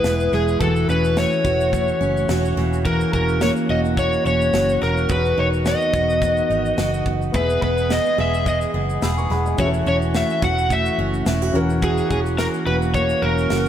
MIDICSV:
0, 0, Header, 1, 7, 480
1, 0, Start_track
1, 0, Tempo, 560748
1, 519, Time_signature, 4, 2, 24, 8
1, 11716, End_track
2, 0, Start_track
2, 0, Title_t, "Upright piano"
2, 0, Program_c, 0, 0
2, 6267, Note_on_c, 0, 59, 73
2, 6276, Note_on_c, 0, 64, 60
2, 6289, Note_on_c, 0, 68, 58
2, 6300, Note_on_c, 0, 76, 78
2, 6462, Control_c, 0, 64, 127
2, 7703, Note_off_c, 0, 76, 0
2, 7725, Note_on_c, 0, 88, 60
2, 7730, Note_on_c, 0, 83, 56
2, 7850, Note_off_c, 0, 88, 0
2, 7853, Note_off_c, 0, 83, 0
2, 7857, Note_on_c, 0, 85, 75
2, 7863, Note_on_c, 0, 80, 61
2, 7960, Note_off_c, 0, 85, 0
2, 7962, Note_off_c, 0, 80, 0
2, 7969, Note_on_c, 0, 83, 74
2, 7974, Note_on_c, 0, 78, 68
2, 8092, Note_off_c, 0, 83, 0
2, 8095, Note_off_c, 0, 78, 0
2, 8102, Note_on_c, 0, 80, 68
2, 8106, Note_on_c, 0, 75, 53
2, 8161, Note_off_c, 0, 59, 0
2, 8166, Note_off_c, 0, 64, 0
2, 8173, Note_off_c, 0, 68, 0
2, 8190, Note_on_c, 0, 61, 69
2, 8202, Note_on_c, 0, 66, 64
2, 8213, Control_c, 0, 64, 0
2, 8213, Note_on_c, 0, 68, 51
2, 8224, Note_on_c, 0, 76, 75
2, 8267, Note_on_c, 0, 69, 66
2, 8269, Note_off_c, 0, 68, 0
2, 8327, Note_off_c, 0, 80, 0
2, 8329, Note_off_c, 0, 75, 0
2, 8366, Control_c, 0, 64, 127
2, 9842, Note_off_c, 0, 61, 0
2, 9849, Note_off_c, 0, 66, 0
2, 9860, Note_off_c, 0, 76, 0
2, 9864, Note_on_c, 0, 61, 82
2, 9877, Note_on_c, 0, 66, 69
2, 9882, Note_off_c, 0, 69, 0
2, 9888, Note_on_c, 0, 70, 79
2, 9895, Control_c, 0, 64, 0
2, 9898, Note_on_c, 0, 78, 91
2, 10063, Control_c, 0, 64, 127
2, 11716, Note_off_c, 0, 61, 0
2, 11716, Note_off_c, 0, 66, 0
2, 11716, Note_off_c, 0, 70, 0
2, 11716, Note_off_c, 0, 78, 0
2, 11716, End_track
3, 0, Start_track
3, 0, Title_t, "Electric slide guitar"
3, 0, Program_c, 1, 29
3, 0, Note_on_c, 1, 71, 98
3, 256, Note_off_c, 1, 71, 0
3, 292, Note_on_c, 1, 68, 88
3, 524, Note_off_c, 1, 68, 0
3, 528, Note_on_c, 1, 69, 84
3, 767, Note_off_c, 1, 69, 0
3, 771, Note_on_c, 1, 71, 89
3, 1009, Note_on_c, 1, 73, 93
3, 1012, Note_off_c, 1, 71, 0
3, 2171, Note_off_c, 1, 73, 0
3, 2449, Note_on_c, 1, 70, 97
3, 2678, Note_off_c, 1, 70, 0
3, 2688, Note_on_c, 1, 70, 83
3, 2908, Note_off_c, 1, 70, 0
3, 2928, Note_on_c, 1, 73, 97
3, 2992, Note_off_c, 1, 73, 0
3, 3170, Note_on_c, 1, 75, 120
3, 3233, Note_off_c, 1, 75, 0
3, 3413, Note_on_c, 1, 73, 107
3, 3631, Note_off_c, 1, 73, 0
3, 3653, Note_on_c, 1, 73, 94
3, 4095, Note_off_c, 1, 73, 0
3, 4136, Note_on_c, 1, 70, 86
3, 4353, Note_off_c, 1, 70, 0
3, 4377, Note_on_c, 1, 71, 96
3, 4615, Note_on_c, 1, 73, 93
3, 4617, Note_off_c, 1, 71, 0
3, 4678, Note_off_c, 1, 73, 0
3, 4858, Note_on_c, 1, 75, 92
3, 6017, Note_off_c, 1, 75, 0
3, 6297, Note_on_c, 1, 71, 88
3, 6526, Note_off_c, 1, 71, 0
3, 6536, Note_on_c, 1, 71, 85
3, 6777, Note_off_c, 1, 71, 0
3, 6780, Note_on_c, 1, 75, 105
3, 6996, Note_off_c, 1, 75, 0
3, 7023, Note_on_c, 1, 76, 107
3, 7237, Note_off_c, 1, 76, 0
3, 7261, Note_on_c, 1, 75, 98
3, 7324, Note_off_c, 1, 75, 0
3, 8216, Note_on_c, 1, 73, 81
3, 8279, Note_off_c, 1, 73, 0
3, 8461, Note_on_c, 1, 73, 81
3, 8523, Note_off_c, 1, 73, 0
3, 8701, Note_on_c, 1, 76, 96
3, 8916, Note_off_c, 1, 76, 0
3, 8940, Note_on_c, 1, 78, 117
3, 9179, Note_off_c, 1, 78, 0
3, 9179, Note_on_c, 1, 76, 103
3, 9395, Note_off_c, 1, 76, 0
3, 10131, Note_on_c, 1, 68, 104
3, 10357, Note_off_c, 1, 68, 0
3, 10368, Note_on_c, 1, 68, 87
3, 10432, Note_off_c, 1, 68, 0
3, 10603, Note_on_c, 1, 70, 101
3, 10667, Note_off_c, 1, 70, 0
3, 10842, Note_on_c, 1, 71, 111
3, 10907, Note_off_c, 1, 71, 0
3, 11082, Note_on_c, 1, 73, 114
3, 11317, Note_on_c, 1, 70, 98
3, 11329, Note_off_c, 1, 73, 0
3, 11716, Note_off_c, 1, 70, 0
3, 11716, End_track
4, 0, Start_track
4, 0, Title_t, "Steel-string acoustic guitar"
4, 0, Program_c, 2, 25
4, 0, Note_on_c, 2, 40, 75
4, 0, Note_on_c, 2, 56, 58
4, 0, Note_on_c, 2, 59, 62
4, 40, Note_on_c, 2, 64, 63
4, 274, Note_off_c, 2, 56, 0
4, 284, Note_on_c, 2, 56, 57
4, 520, Note_off_c, 2, 40, 0
4, 520, Note_off_c, 2, 64, 0
4, 521, Note_on_c, 2, 52, 82
4, 527, Note_on_c, 2, 66, 69
4, 574, Note_off_c, 2, 56, 0
4, 574, Note_off_c, 2, 59, 0
4, 759, Note_on_c, 2, 61, 60
4, 997, Note_on_c, 2, 57, 62
4, 1236, Note_off_c, 2, 66, 0
4, 1240, Note_on_c, 2, 66, 73
4, 1470, Note_off_c, 2, 57, 0
4, 1480, Note_on_c, 2, 57, 63
4, 1714, Note_off_c, 2, 61, 0
4, 1718, Note_on_c, 2, 61, 73
4, 1959, Note_off_c, 2, 66, 0
4, 1963, Note_on_c, 2, 66, 65
4, 2191, Note_off_c, 2, 52, 0
4, 2202, Note_on_c, 2, 52, 82
4, 2254, Note_off_c, 2, 57, 0
4, 2434, Note_off_c, 2, 52, 0
4, 2444, Note_on_c, 2, 52, 85
4, 2447, Note_off_c, 2, 66, 0
4, 2450, Note_on_c, 2, 66, 73
4, 2679, Note_off_c, 2, 61, 0
4, 2682, Note_on_c, 2, 61, 60
4, 2921, Note_on_c, 2, 58, 68
4, 3158, Note_off_c, 2, 66, 0
4, 3162, Note_on_c, 2, 66, 72
4, 3392, Note_off_c, 2, 58, 0
4, 3402, Note_on_c, 2, 58, 66
4, 3632, Note_off_c, 2, 61, 0
4, 3642, Note_on_c, 2, 61, 69
4, 3878, Note_off_c, 2, 66, 0
4, 3882, Note_on_c, 2, 66, 58
4, 4112, Note_off_c, 2, 58, 0
4, 4122, Note_on_c, 2, 58, 60
4, 4355, Note_on_c, 2, 40, 87
4, 4357, Note_off_c, 2, 66, 0
4, 4361, Note_on_c, 2, 66, 76
4, 4365, Note_off_c, 2, 52, 0
4, 4416, Note_off_c, 2, 58, 0
4, 4416, Note_off_c, 2, 61, 0
4, 4601, Note_on_c, 2, 63, 57
4, 4844, Note_on_c, 2, 59, 64
4, 5071, Note_off_c, 2, 66, 0
4, 5081, Note_on_c, 2, 66, 73
4, 5324, Note_off_c, 2, 59, 0
4, 5327, Note_on_c, 2, 59, 65
4, 5558, Note_off_c, 2, 63, 0
4, 5568, Note_on_c, 2, 63, 67
4, 5794, Note_off_c, 2, 66, 0
4, 5804, Note_on_c, 2, 66, 67
4, 6041, Note_off_c, 2, 59, 0
4, 6045, Note_on_c, 2, 59, 58
4, 6273, Note_off_c, 2, 40, 0
4, 6283, Note_on_c, 2, 40, 85
4, 6284, Note_off_c, 2, 66, 0
4, 6288, Note_on_c, 2, 68, 68
4, 6339, Note_off_c, 2, 63, 0
4, 6523, Note_off_c, 2, 59, 0
4, 6523, Note_on_c, 2, 59, 58
4, 6764, Note_on_c, 2, 56, 56
4, 6994, Note_off_c, 2, 68, 0
4, 7004, Note_on_c, 2, 68, 74
4, 7238, Note_off_c, 2, 56, 0
4, 7248, Note_on_c, 2, 56, 63
4, 7472, Note_off_c, 2, 59, 0
4, 7483, Note_on_c, 2, 59, 67
4, 7716, Note_off_c, 2, 68, 0
4, 7726, Note_on_c, 2, 68, 70
4, 7951, Note_off_c, 2, 56, 0
4, 7961, Note_on_c, 2, 56, 56
4, 8204, Note_off_c, 2, 40, 0
4, 8205, Note_off_c, 2, 68, 0
4, 8206, Note_on_c, 2, 52, 89
4, 8213, Note_on_c, 2, 66, 56
4, 8255, Note_off_c, 2, 56, 0
4, 8256, Note_off_c, 2, 59, 0
4, 8443, Note_on_c, 2, 61, 61
4, 8686, Note_on_c, 2, 57, 58
4, 8926, Note_off_c, 2, 66, 0
4, 8930, Note_on_c, 2, 66, 73
4, 9154, Note_off_c, 2, 57, 0
4, 9165, Note_on_c, 2, 57, 66
4, 9401, Note_off_c, 2, 61, 0
4, 9405, Note_on_c, 2, 61, 68
4, 9642, Note_off_c, 2, 66, 0
4, 9645, Note_on_c, 2, 64, 66
4, 9775, Note_off_c, 2, 64, 0
4, 9775, Note_on_c, 2, 66, 52
4, 9879, Note_off_c, 2, 52, 0
4, 9889, Note_on_c, 2, 52, 83
4, 9936, Note_off_c, 2, 57, 0
4, 9936, Note_off_c, 2, 66, 0
4, 10115, Note_off_c, 2, 52, 0
4, 10125, Note_on_c, 2, 52, 86
4, 10131, Note_on_c, 2, 66, 68
4, 10363, Note_off_c, 2, 61, 0
4, 10366, Note_on_c, 2, 61, 59
4, 10604, Note_on_c, 2, 58, 60
4, 10837, Note_off_c, 2, 66, 0
4, 10841, Note_on_c, 2, 66, 71
4, 11069, Note_off_c, 2, 58, 0
4, 11079, Note_on_c, 2, 58, 66
4, 11311, Note_off_c, 2, 61, 0
4, 11321, Note_on_c, 2, 61, 72
4, 11553, Note_off_c, 2, 66, 0
4, 11557, Note_on_c, 2, 66, 66
4, 11716, Note_off_c, 2, 52, 0
4, 11716, Note_off_c, 2, 58, 0
4, 11716, Note_off_c, 2, 61, 0
4, 11716, Note_off_c, 2, 66, 0
4, 11716, End_track
5, 0, Start_track
5, 0, Title_t, "Woodwind section"
5, 0, Program_c, 3, 71
5, 0, Note_on_c, 3, 52, 74
5, 0, Note_on_c, 3, 59, 69
5, 0, Note_on_c, 3, 68, 81
5, 499, Note_off_c, 3, 59, 0
5, 499, Note_off_c, 3, 68, 0
5, 523, Note_on_c, 3, 57, 77
5, 526, Note_on_c, 3, 66, 88
5, 2165, Note_off_c, 3, 52, 0
5, 2186, Note_off_c, 3, 57, 0
5, 2208, Note_on_c, 3, 49, 79
5, 2211, Note_on_c, 3, 58, 67
5, 4345, Note_off_c, 3, 49, 0
5, 4347, Note_off_c, 3, 58, 0
5, 4361, Note_on_c, 3, 51, 74
5, 4363, Note_on_c, 3, 59, 74
5, 6142, Note_off_c, 3, 51, 0
5, 6142, Note_off_c, 3, 66, 0
5, 6288, Note_on_c, 3, 68, 89
5, 6293, Note_on_c, 3, 52, 80
5, 8170, Note_off_c, 3, 59, 0
5, 8187, Note_off_c, 3, 68, 0
5, 8210, Note_on_c, 3, 57, 72
5, 8211, Note_on_c, 3, 66, 89
5, 9853, Note_off_c, 3, 52, 0
5, 9870, Note_off_c, 3, 57, 0
5, 9876, Note_on_c, 3, 58, 70
5, 9878, Note_on_c, 3, 49, 69
5, 11716, Note_off_c, 3, 49, 0
5, 11716, Note_off_c, 3, 58, 0
5, 11716, Note_off_c, 3, 66, 0
5, 11716, End_track
6, 0, Start_track
6, 0, Title_t, "Fingered electric bass"
6, 0, Program_c, 4, 33
6, 33, Note_on_c, 4, 28, 100
6, 232, Note_off_c, 4, 28, 0
6, 274, Note_on_c, 4, 28, 94
6, 473, Note_off_c, 4, 28, 0
6, 518, Note_on_c, 4, 28, 103
6, 716, Note_off_c, 4, 28, 0
6, 755, Note_on_c, 4, 28, 103
6, 1062, Note_off_c, 4, 28, 0
6, 1236, Note_on_c, 4, 28, 92
6, 1632, Note_off_c, 4, 28, 0
6, 1717, Note_on_c, 4, 30, 91
6, 1916, Note_off_c, 4, 30, 0
6, 1957, Note_on_c, 4, 28, 100
6, 2156, Note_off_c, 4, 28, 0
6, 2196, Note_on_c, 4, 28, 99
6, 2592, Note_off_c, 4, 28, 0
6, 2680, Note_on_c, 4, 28, 99
6, 2986, Note_off_c, 4, 28, 0
6, 3161, Note_on_c, 4, 28, 103
6, 3555, Note_off_c, 4, 28, 0
6, 3641, Note_on_c, 4, 28, 85
6, 3838, Note_off_c, 4, 28, 0
6, 3880, Note_on_c, 4, 30, 105
6, 4078, Note_off_c, 4, 30, 0
6, 4124, Note_on_c, 4, 28, 104
6, 4321, Note_off_c, 4, 28, 0
6, 4361, Note_on_c, 4, 28, 105
6, 4559, Note_off_c, 4, 28, 0
6, 4604, Note_on_c, 4, 28, 90
6, 4909, Note_off_c, 4, 28, 0
6, 5080, Note_on_c, 4, 28, 94
6, 5475, Note_off_c, 4, 28, 0
6, 5561, Note_on_c, 4, 32, 80
6, 5759, Note_off_c, 4, 32, 0
6, 5800, Note_on_c, 4, 30, 100
6, 5999, Note_off_c, 4, 30, 0
6, 6041, Note_on_c, 4, 30, 94
6, 6239, Note_off_c, 4, 30, 0
6, 6282, Note_on_c, 4, 28, 91
6, 6480, Note_off_c, 4, 28, 0
6, 6524, Note_on_c, 4, 28, 103
6, 6829, Note_off_c, 4, 28, 0
6, 7003, Note_on_c, 4, 28, 93
6, 7397, Note_off_c, 4, 28, 0
6, 7480, Note_on_c, 4, 30, 91
6, 7679, Note_off_c, 4, 30, 0
6, 7724, Note_on_c, 4, 28, 99
6, 7921, Note_off_c, 4, 28, 0
6, 7961, Note_on_c, 4, 28, 94
6, 8159, Note_off_c, 4, 28, 0
6, 8203, Note_on_c, 4, 28, 104
6, 8400, Note_off_c, 4, 28, 0
6, 8439, Note_on_c, 4, 28, 95
6, 8746, Note_off_c, 4, 28, 0
6, 8921, Note_on_c, 4, 28, 100
6, 9316, Note_off_c, 4, 28, 0
6, 9399, Note_on_c, 4, 30, 91
6, 9597, Note_off_c, 4, 30, 0
6, 9639, Note_on_c, 4, 28, 112
6, 9838, Note_off_c, 4, 28, 0
6, 9878, Note_on_c, 4, 28, 104
6, 10273, Note_off_c, 4, 28, 0
6, 10362, Note_on_c, 4, 28, 96
6, 10667, Note_off_c, 4, 28, 0
6, 10838, Note_on_c, 4, 28, 103
6, 11233, Note_off_c, 4, 28, 0
6, 11316, Note_on_c, 4, 28, 95
6, 11515, Note_off_c, 4, 28, 0
6, 11560, Note_on_c, 4, 30, 106
6, 11716, Note_off_c, 4, 30, 0
6, 11716, End_track
7, 0, Start_track
7, 0, Title_t, "Drums"
7, 34, Note_on_c, 9, 82, 73
7, 37, Note_on_c, 9, 38, 109
7, 120, Note_off_c, 9, 82, 0
7, 122, Note_off_c, 9, 38, 0
7, 170, Note_on_c, 9, 82, 63
7, 256, Note_off_c, 9, 82, 0
7, 275, Note_on_c, 9, 82, 37
7, 277, Note_on_c, 9, 38, 28
7, 360, Note_off_c, 9, 82, 0
7, 363, Note_off_c, 9, 38, 0
7, 412, Note_on_c, 9, 82, 50
7, 498, Note_off_c, 9, 82, 0
7, 518, Note_on_c, 9, 82, 63
7, 519, Note_on_c, 9, 36, 109
7, 604, Note_off_c, 9, 36, 0
7, 604, Note_off_c, 9, 82, 0
7, 650, Note_on_c, 9, 82, 49
7, 735, Note_off_c, 9, 82, 0
7, 763, Note_on_c, 9, 82, 58
7, 849, Note_off_c, 9, 82, 0
7, 895, Note_on_c, 9, 82, 54
7, 980, Note_off_c, 9, 82, 0
7, 999, Note_on_c, 9, 82, 72
7, 1001, Note_on_c, 9, 38, 125
7, 1085, Note_off_c, 9, 82, 0
7, 1087, Note_off_c, 9, 38, 0
7, 1130, Note_on_c, 9, 82, 44
7, 1216, Note_off_c, 9, 82, 0
7, 1239, Note_on_c, 9, 36, 107
7, 1247, Note_on_c, 9, 82, 50
7, 1324, Note_off_c, 9, 36, 0
7, 1332, Note_off_c, 9, 82, 0
7, 1375, Note_on_c, 9, 82, 57
7, 1461, Note_off_c, 9, 82, 0
7, 1480, Note_on_c, 9, 36, 93
7, 1487, Note_on_c, 9, 82, 79
7, 1566, Note_off_c, 9, 36, 0
7, 1573, Note_off_c, 9, 82, 0
7, 1610, Note_on_c, 9, 82, 49
7, 1695, Note_off_c, 9, 82, 0
7, 1728, Note_on_c, 9, 82, 49
7, 1814, Note_off_c, 9, 82, 0
7, 1857, Note_on_c, 9, 82, 52
7, 1942, Note_off_c, 9, 82, 0
7, 1959, Note_on_c, 9, 82, 68
7, 1961, Note_on_c, 9, 38, 110
7, 2044, Note_off_c, 9, 82, 0
7, 2047, Note_off_c, 9, 38, 0
7, 2097, Note_on_c, 9, 82, 62
7, 2183, Note_off_c, 9, 82, 0
7, 2206, Note_on_c, 9, 38, 27
7, 2291, Note_off_c, 9, 38, 0
7, 2337, Note_on_c, 9, 82, 55
7, 2423, Note_off_c, 9, 82, 0
7, 2441, Note_on_c, 9, 82, 61
7, 2443, Note_on_c, 9, 36, 114
7, 2527, Note_off_c, 9, 82, 0
7, 2529, Note_off_c, 9, 36, 0
7, 2573, Note_on_c, 9, 82, 57
7, 2659, Note_off_c, 9, 82, 0
7, 2683, Note_on_c, 9, 36, 93
7, 2684, Note_on_c, 9, 82, 55
7, 2768, Note_off_c, 9, 36, 0
7, 2770, Note_off_c, 9, 82, 0
7, 2813, Note_on_c, 9, 82, 50
7, 2898, Note_off_c, 9, 82, 0
7, 2919, Note_on_c, 9, 82, 75
7, 2921, Note_on_c, 9, 38, 116
7, 3004, Note_off_c, 9, 82, 0
7, 3006, Note_off_c, 9, 38, 0
7, 3050, Note_on_c, 9, 82, 47
7, 3136, Note_off_c, 9, 82, 0
7, 3295, Note_on_c, 9, 82, 57
7, 3381, Note_off_c, 9, 82, 0
7, 3401, Note_on_c, 9, 36, 96
7, 3406, Note_on_c, 9, 82, 70
7, 3487, Note_off_c, 9, 36, 0
7, 3491, Note_off_c, 9, 82, 0
7, 3532, Note_on_c, 9, 82, 49
7, 3617, Note_off_c, 9, 82, 0
7, 3652, Note_on_c, 9, 82, 49
7, 3737, Note_off_c, 9, 82, 0
7, 3778, Note_on_c, 9, 82, 52
7, 3863, Note_off_c, 9, 82, 0
7, 3881, Note_on_c, 9, 82, 72
7, 3884, Note_on_c, 9, 38, 112
7, 3967, Note_off_c, 9, 82, 0
7, 3970, Note_off_c, 9, 38, 0
7, 4015, Note_on_c, 9, 82, 58
7, 4101, Note_off_c, 9, 82, 0
7, 4122, Note_on_c, 9, 38, 30
7, 4207, Note_off_c, 9, 38, 0
7, 4255, Note_on_c, 9, 82, 52
7, 4340, Note_off_c, 9, 82, 0
7, 4361, Note_on_c, 9, 82, 62
7, 4363, Note_on_c, 9, 36, 111
7, 4447, Note_off_c, 9, 82, 0
7, 4448, Note_off_c, 9, 36, 0
7, 4495, Note_on_c, 9, 82, 51
7, 4581, Note_off_c, 9, 82, 0
7, 4737, Note_on_c, 9, 82, 48
7, 4822, Note_off_c, 9, 82, 0
7, 4840, Note_on_c, 9, 82, 79
7, 4842, Note_on_c, 9, 38, 115
7, 4926, Note_off_c, 9, 82, 0
7, 4928, Note_off_c, 9, 38, 0
7, 4972, Note_on_c, 9, 82, 44
7, 5058, Note_off_c, 9, 82, 0
7, 5081, Note_on_c, 9, 36, 104
7, 5089, Note_on_c, 9, 82, 57
7, 5166, Note_off_c, 9, 36, 0
7, 5174, Note_off_c, 9, 82, 0
7, 5219, Note_on_c, 9, 82, 56
7, 5304, Note_off_c, 9, 82, 0
7, 5322, Note_on_c, 9, 36, 93
7, 5330, Note_on_c, 9, 82, 77
7, 5408, Note_off_c, 9, 36, 0
7, 5416, Note_off_c, 9, 82, 0
7, 5453, Note_on_c, 9, 82, 54
7, 5539, Note_off_c, 9, 82, 0
7, 5572, Note_on_c, 9, 82, 55
7, 5657, Note_off_c, 9, 82, 0
7, 5697, Note_on_c, 9, 82, 49
7, 5783, Note_off_c, 9, 82, 0
7, 5801, Note_on_c, 9, 82, 68
7, 5803, Note_on_c, 9, 38, 117
7, 5886, Note_off_c, 9, 82, 0
7, 5889, Note_off_c, 9, 38, 0
7, 5939, Note_on_c, 9, 82, 63
7, 6025, Note_off_c, 9, 82, 0
7, 6042, Note_on_c, 9, 36, 85
7, 6128, Note_off_c, 9, 36, 0
7, 6178, Note_on_c, 9, 82, 51
7, 6264, Note_off_c, 9, 82, 0
7, 6283, Note_on_c, 9, 82, 62
7, 6285, Note_on_c, 9, 36, 115
7, 6369, Note_off_c, 9, 82, 0
7, 6370, Note_off_c, 9, 36, 0
7, 6417, Note_on_c, 9, 82, 57
7, 6502, Note_off_c, 9, 82, 0
7, 6525, Note_on_c, 9, 36, 96
7, 6611, Note_off_c, 9, 36, 0
7, 6657, Note_on_c, 9, 82, 55
7, 6742, Note_off_c, 9, 82, 0
7, 6765, Note_on_c, 9, 82, 72
7, 6767, Note_on_c, 9, 38, 116
7, 6850, Note_off_c, 9, 82, 0
7, 6852, Note_off_c, 9, 38, 0
7, 6894, Note_on_c, 9, 82, 47
7, 6980, Note_off_c, 9, 82, 0
7, 7140, Note_on_c, 9, 82, 59
7, 7226, Note_off_c, 9, 82, 0
7, 7244, Note_on_c, 9, 36, 91
7, 7250, Note_on_c, 9, 82, 75
7, 7329, Note_off_c, 9, 36, 0
7, 7335, Note_off_c, 9, 82, 0
7, 7373, Note_on_c, 9, 82, 53
7, 7458, Note_off_c, 9, 82, 0
7, 7616, Note_on_c, 9, 82, 53
7, 7701, Note_off_c, 9, 82, 0
7, 7722, Note_on_c, 9, 82, 66
7, 7724, Note_on_c, 9, 38, 106
7, 7807, Note_off_c, 9, 82, 0
7, 7810, Note_off_c, 9, 38, 0
7, 7855, Note_on_c, 9, 82, 57
7, 7941, Note_off_c, 9, 82, 0
7, 7965, Note_on_c, 9, 38, 32
7, 8051, Note_off_c, 9, 38, 0
7, 8098, Note_on_c, 9, 82, 56
7, 8183, Note_off_c, 9, 82, 0
7, 8202, Note_on_c, 9, 82, 70
7, 8205, Note_on_c, 9, 36, 119
7, 8288, Note_off_c, 9, 82, 0
7, 8290, Note_off_c, 9, 36, 0
7, 8334, Note_on_c, 9, 82, 54
7, 8420, Note_off_c, 9, 82, 0
7, 8446, Note_on_c, 9, 82, 53
7, 8532, Note_off_c, 9, 82, 0
7, 8577, Note_on_c, 9, 82, 56
7, 8662, Note_off_c, 9, 82, 0
7, 8682, Note_on_c, 9, 82, 72
7, 8684, Note_on_c, 9, 38, 127
7, 8768, Note_off_c, 9, 82, 0
7, 8770, Note_off_c, 9, 38, 0
7, 8816, Note_on_c, 9, 82, 46
7, 8902, Note_off_c, 9, 82, 0
7, 8923, Note_on_c, 9, 36, 113
7, 8929, Note_on_c, 9, 82, 52
7, 9009, Note_off_c, 9, 36, 0
7, 9015, Note_off_c, 9, 82, 0
7, 9058, Note_on_c, 9, 82, 58
7, 9144, Note_off_c, 9, 82, 0
7, 9163, Note_on_c, 9, 36, 84
7, 9166, Note_on_c, 9, 82, 75
7, 9248, Note_off_c, 9, 36, 0
7, 9252, Note_off_c, 9, 82, 0
7, 9292, Note_on_c, 9, 82, 53
7, 9378, Note_off_c, 9, 82, 0
7, 9533, Note_on_c, 9, 82, 53
7, 9619, Note_off_c, 9, 82, 0
7, 9639, Note_on_c, 9, 82, 77
7, 9642, Note_on_c, 9, 38, 115
7, 9725, Note_off_c, 9, 82, 0
7, 9727, Note_off_c, 9, 38, 0
7, 9775, Note_on_c, 9, 82, 56
7, 9860, Note_off_c, 9, 82, 0
7, 9881, Note_on_c, 9, 82, 38
7, 9967, Note_off_c, 9, 82, 0
7, 10013, Note_on_c, 9, 82, 55
7, 10098, Note_off_c, 9, 82, 0
7, 10120, Note_on_c, 9, 82, 74
7, 10122, Note_on_c, 9, 36, 107
7, 10205, Note_off_c, 9, 82, 0
7, 10208, Note_off_c, 9, 36, 0
7, 10252, Note_on_c, 9, 82, 56
7, 10337, Note_off_c, 9, 82, 0
7, 10362, Note_on_c, 9, 36, 97
7, 10364, Note_on_c, 9, 82, 58
7, 10448, Note_off_c, 9, 36, 0
7, 10450, Note_off_c, 9, 82, 0
7, 10495, Note_on_c, 9, 82, 51
7, 10580, Note_off_c, 9, 82, 0
7, 10599, Note_on_c, 9, 82, 73
7, 10601, Note_on_c, 9, 38, 116
7, 10685, Note_off_c, 9, 82, 0
7, 10687, Note_off_c, 9, 38, 0
7, 10730, Note_on_c, 9, 82, 46
7, 10816, Note_off_c, 9, 82, 0
7, 10974, Note_on_c, 9, 82, 60
7, 11060, Note_off_c, 9, 82, 0
7, 11079, Note_on_c, 9, 36, 94
7, 11086, Note_on_c, 9, 82, 71
7, 11165, Note_off_c, 9, 36, 0
7, 11172, Note_off_c, 9, 82, 0
7, 11209, Note_on_c, 9, 82, 47
7, 11295, Note_off_c, 9, 82, 0
7, 11455, Note_on_c, 9, 82, 51
7, 11540, Note_off_c, 9, 82, 0
7, 11557, Note_on_c, 9, 82, 68
7, 11560, Note_on_c, 9, 38, 112
7, 11643, Note_off_c, 9, 82, 0
7, 11645, Note_off_c, 9, 38, 0
7, 11716, End_track
0, 0, End_of_file